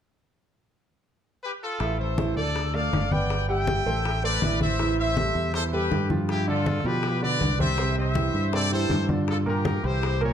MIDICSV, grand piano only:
0, 0, Header, 1, 2, 480
1, 0, Start_track
1, 0, Key_signature, 0, "minor"
1, 0, Tempo, 373599
1, 400, Time_signature, 4, 2, 24, 8
1, 13272, End_track
2, 0, Start_track
2, 0, Title_t, "Grand piano"
2, 0, Program_c, 0, 0
2, 2314, Note_on_c, 0, 52, 72
2, 2322, Note_on_c, 0, 64, 83
2, 2325, Note_on_c, 0, 76, 84
2, 2711, Note_off_c, 0, 52, 0
2, 2716, Note_off_c, 0, 64, 0
2, 2718, Note_off_c, 0, 76, 0
2, 2802, Note_on_c, 0, 52, 71
2, 2804, Note_on_c, 0, 64, 74
2, 2807, Note_on_c, 0, 76, 72
2, 2999, Note_off_c, 0, 52, 0
2, 3000, Note_off_c, 0, 64, 0
2, 3002, Note_off_c, 0, 76, 0
2, 3044, Note_on_c, 0, 57, 64
2, 3046, Note_on_c, 0, 74, 68
2, 3048, Note_on_c, 0, 69, 66
2, 3437, Note_off_c, 0, 57, 0
2, 3438, Note_off_c, 0, 74, 0
2, 3439, Note_off_c, 0, 69, 0
2, 3518, Note_on_c, 0, 57, 73
2, 3524, Note_on_c, 0, 69, 73
2, 3525, Note_on_c, 0, 74, 70
2, 3914, Note_off_c, 0, 57, 0
2, 3917, Note_off_c, 0, 69, 0
2, 3917, Note_off_c, 0, 74, 0
2, 4005, Note_on_c, 0, 59, 63
2, 4010, Note_on_c, 0, 74, 61
2, 4011, Note_on_c, 0, 71, 66
2, 4398, Note_off_c, 0, 59, 0
2, 4401, Note_off_c, 0, 74, 0
2, 4402, Note_off_c, 0, 71, 0
2, 4476, Note_on_c, 0, 55, 82
2, 4480, Note_on_c, 0, 79, 88
2, 4481, Note_on_c, 0, 67, 86
2, 4872, Note_off_c, 0, 55, 0
2, 4875, Note_off_c, 0, 79, 0
2, 4876, Note_off_c, 0, 67, 0
2, 4960, Note_on_c, 0, 57, 68
2, 4962, Note_on_c, 0, 69, 68
2, 4963, Note_on_c, 0, 72, 72
2, 5355, Note_off_c, 0, 57, 0
2, 5356, Note_off_c, 0, 69, 0
2, 5357, Note_off_c, 0, 72, 0
2, 5439, Note_on_c, 0, 57, 67
2, 5444, Note_on_c, 0, 69, 77
2, 5445, Note_on_c, 0, 72, 74
2, 5637, Note_off_c, 0, 57, 0
2, 5641, Note_off_c, 0, 69, 0
2, 5641, Note_off_c, 0, 72, 0
2, 5679, Note_on_c, 0, 52, 73
2, 5682, Note_on_c, 0, 64, 75
2, 5687, Note_on_c, 0, 76, 68
2, 6074, Note_off_c, 0, 52, 0
2, 6076, Note_off_c, 0, 64, 0
2, 6079, Note_off_c, 0, 76, 0
2, 6162, Note_on_c, 0, 52, 87
2, 6164, Note_on_c, 0, 64, 82
2, 6171, Note_on_c, 0, 76, 81
2, 6556, Note_off_c, 0, 52, 0
2, 6557, Note_off_c, 0, 64, 0
2, 6561, Note_off_c, 0, 76, 0
2, 6636, Note_on_c, 0, 55, 65
2, 6638, Note_on_c, 0, 67, 64
2, 6641, Note_on_c, 0, 69, 61
2, 7032, Note_off_c, 0, 55, 0
2, 7034, Note_off_c, 0, 67, 0
2, 7036, Note_off_c, 0, 69, 0
2, 7132, Note_on_c, 0, 52, 72
2, 7132, Note_on_c, 0, 64, 69
2, 7136, Note_on_c, 0, 76, 73
2, 7325, Note_off_c, 0, 52, 0
2, 7325, Note_off_c, 0, 64, 0
2, 7328, Note_off_c, 0, 76, 0
2, 7361, Note_on_c, 0, 55, 72
2, 7363, Note_on_c, 0, 67, 71
2, 7370, Note_on_c, 0, 69, 68
2, 7558, Note_off_c, 0, 55, 0
2, 7560, Note_off_c, 0, 67, 0
2, 7564, Note_off_c, 0, 69, 0
2, 7591, Note_on_c, 0, 55, 65
2, 7593, Note_on_c, 0, 67, 68
2, 7602, Note_on_c, 0, 69, 63
2, 7793, Note_off_c, 0, 55, 0
2, 7793, Note_off_c, 0, 67, 0
2, 7799, Note_off_c, 0, 69, 0
2, 7842, Note_on_c, 0, 53, 70
2, 7847, Note_on_c, 0, 67, 69
2, 7849, Note_on_c, 0, 65, 75
2, 8236, Note_off_c, 0, 53, 0
2, 8239, Note_off_c, 0, 67, 0
2, 8240, Note_off_c, 0, 65, 0
2, 8323, Note_on_c, 0, 50, 85
2, 8323, Note_on_c, 0, 62, 86
2, 8326, Note_on_c, 0, 74, 78
2, 8716, Note_off_c, 0, 62, 0
2, 8717, Note_off_c, 0, 50, 0
2, 8718, Note_off_c, 0, 74, 0
2, 8804, Note_on_c, 0, 53, 72
2, 8809, Note_on_c, 0, 65, 68
2, 8811, Note_on_c, 0, 67, 78
2, 9197, Note_off_c, 0, 53, 0
2, 9200, Note_off_c, 0, 65, 0
2, 9201, Note_off_c, 0, 67, 0
2, 9283, Note_on_c, 0, 50, 78
2, 9288, Note_on_c, 0, 62, 81
2, 9290, Note_on_c, 0, 74, 78
2, 9676, Note_off_c, 0, 50, 0
2, 9679, Note_off_c, 0, 62, 0
2, 9681, Note_off_c, 0, 74, 0
2, 9753, Note_on_c, 0, 48, 76
2, 9758, Note_on_c, 0, 60, 74
2, 9764, Note_on_c, 0, 72, 76
2, 9954, Note_off_c, 0, 48, 0
2, 9957, Note_off_c, 0, 60, 0
2, 9960, Note_off_c, 0, 72, 0
2, 10003, Note_on_c, 0, 48, 85
2, 10007, Note_on_c, 0, 60, 81
2, 10010, Note_on_c, 0, 72, 84
2, 10396, Note_off_c, 0, 48, 0
2, 10399, Note_off_c, 0, 60, 0
2, 10401, Note_off_c, 0, 72, 0
2, 10474, Note_on_c, 0, 52, 66
2, 10480, Note_on_c, 0, 64, 68
2, 10483, Note_on_c, 0, 67, 65
2, 10871, Note_off_c, 0, 52, 0
2, 10875, Note_off_c, 0, 64, 0
2, 10876, Note_off_c, 0, 67, 0
2, 10963, Note_on_c, 0, 48, 69
2, 10967, Note_on_c, 0, 60, 75
2, 10967, Note_on_c, 0, 72, 78
2, 11160, Note_off_c, 0, 48, 0
2, 11162, Note_off_c, 0, 60, 0
2, 11162, Note_off_c, 0, 72, 0
2, 11196, Note_on_c, 0, 52, 74
2, 11202, Note_on_c, 0, 64, 77
2, 11209, Note_on_c, 0, 67, 77
2, 11395, Note_off_c, 0, 52, 0
2, 11399, Note_off_c, 0, 64, 0
2, 11403, Note_off_c, 0, 67, 0
2, 11429, Note_on_c, 0, 52, 63
2, 11437, Note_on_c, 0, 64, 69
2, 11437, Note_on_c, 0, 67, 64
2, 11631, Note_off_c, 0, 52, 0
2, 11636, Note_off_c, 0, 64, 0
2, 11636, Note_off_c, 0, 67, 0
2, 11678, Note_on_c, 0, 50, 71
2, 11680, Note_on_c, 0, 62, 68
2, 11682, Note_on_c, 0, 65, 69
2, 12074, Note_off_c, 0, 50, 0
2, 12075, Note_off_c, 0, 62, 0
2, 12076, Note_off_c, 0, 65, 0
2, 12153, Note_on_c, 0, 46, 82
2, 12154, Note_on_c, 0, 58, 80
2, 12159, Note_on_c, 0, 70, 82
2, 12550, Note_off_c, 0, 46, 0
2, 12551, Note_off_c, 0, 58, 0
2, 12554, Note_off_c, 0, 70, 0
2, 12632, Note_on_c, 0, 52, 72
2, 12633, Note_on_c, 0, 64, 71
2, 12641, Note_on_c, 0, 67, 69
2, 13030, Note_off_c, 0, 52, 0
2, 13031, Note_off_c, 0, 64, 0
2, 13036, Note_off_c, 0, 67, 0
2, 13113, Note_on_c, 0, 46, 87
2, 13113, Note_on_c, 0, 58, 81
2, 13120, Note_on_c, 0, 70, 87
2, 13272, Note_off_c, 0, 46, 0
2, 13272, Note_off_c, 0, 58, 0
2, 13272, Note_off_c, 0, 70, 0
2, 13272, End_track
0, 0, End_of_file